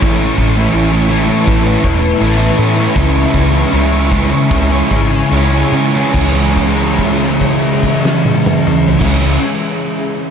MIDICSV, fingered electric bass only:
0, 0, Header, 1, 2, 480
1, 0, Start_track
1, 0, Key_signature, 4, "minor"
1, 0, Tempo, 728155
1, 10, Time_signature, 4, 2, 24, 8
1, 1450, Tempo, 765306
1, 2890, Tempo, 818554
1, 3850, Tempo, 845070
1, 6219, End_track
2, 0, Start_track
2, 0, Title_t, "Fingered electric bass"
2, 0, Program_c, 0, 33
2, 18, Note_on_c, 0, 33, 78
2, 193, Note_off_c, 0, 33, 0
2, 257, Note_on_c, 0, 33, 85
2, 432, Note_off_c, 0, 33, 0
2, 485, Note_on_c, 0, 33, 80
2, 844, Note_off_c, 0, 33, 0
2, 974, Note_on_c, 0, 33, 86
2, 1152, Note_off_c, 0, 33, 0
2, 1215, Note_on_c, 0, 28, 74
2, 1395, Note_off_c, 0, 28, 0
2, 1457, Note_on_c, 0, 33, 80
2, 1630, Note_off_c, 0, 33, 0
2, 1691, Note_on_c, 0, 45, 82
2, 1865, Note_off_c, 0, 45, 0
2, 1931, Note_on_c, 0, 37, 81
2, 2106, Note_off_c, 0, 37, 0
2, 2168, Note_on_c, 0, 37, 79
2, 2345, Note_off_c, 0, 37, 0
2, 2409, Note_on_c, 0, 37, 81
2, 2774, Note_off_c, 0, 37, 0
2, 2900, Note_on_c, 0, 37, 80
2, 3072, Note_off_c, 0, 37, 0
2, 3133, Note_on_c, 0, 32, 71
2, 3309, Note_off_c, 0, 32, 0
2, 3370, Note_on_c, 0, 37, 72
2, 3549, Note_off_c, 0, 37, 0
2, 3609, Note_on_c, 0, 49, 71
2, 3792, Note_off_c, 0, 49, 0
2, 3859, Note_on_c, 0, 37, 73
2, 5407, Note_off_c, 0, 37, 0
2, 5485, Note_on_c, 0, 37, 88
2, 5685, Note_off_c, 0, 37, 0
2, 6219, End_track
0, 0, End_of_file